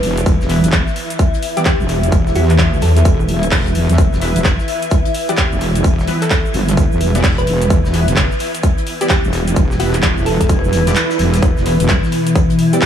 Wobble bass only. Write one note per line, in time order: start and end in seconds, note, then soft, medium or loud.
0.03 0.25 E1 loud
0.26 0.38 E1 loud
0.41 0.62 E1 medium
0.64 0.71 E1 loud
0.73 0.85 F#1 loud
1.80 2.11 E1 loud
2.12 2.34 E1 medium
2.35 2.81 E2 medium
2.82 3.04 E2 medium
3.05 3.50 E1 loud
3.52 3.87 E1 medium
3.90 3.97 E2 medium
3.98 4.10 E1 medium
4.13 4.34 E1 loud
4.36 4.43 E1 medium
4.45 4.57 F#1 loud
5.52 5.83 E1 medium
5.84 6.06 E1 medium
6.54 6.89 G1 loud
6.92 7.22 E1 medium
7.24 7.46 E1 loud
7.47 7.69 E1 medium
7.70 7.83 E1 medium
7.85 8.06 E1 loud
8.08 8.15 E1 medium
8.17 8.29 F#1 loud
9.24 9.55 E1 medium
9.56 9.78 E1 medium
9.80 10.15 E1 medium
10.17 10.38 E1 loud
10.41 10.62 E1 medium
10.64 10.71 E1 medium
10.73 10.95 E1 loud
11.19 11.41 E1 medium
11.43 11.55 E1 medium
11.57 11.78 E1 loud
11.80 11.88 E1 loud
11.89 12.01 F#1 medium